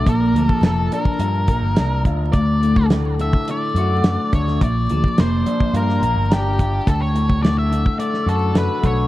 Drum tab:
HH |x-x-x-x-x-x-x-x-|x-x-x-x-x-x-x-x-|x-x-x-x-x-x-x-x-|x-x-x-x-x-x-x-x-|
SD |----o-------o---|----o-------o--o|----o----o--o---|----o----o--o---|
BD |o--o---o--o---o-|o--o---o------o-|o--o---o------o-|o--o---o------o-|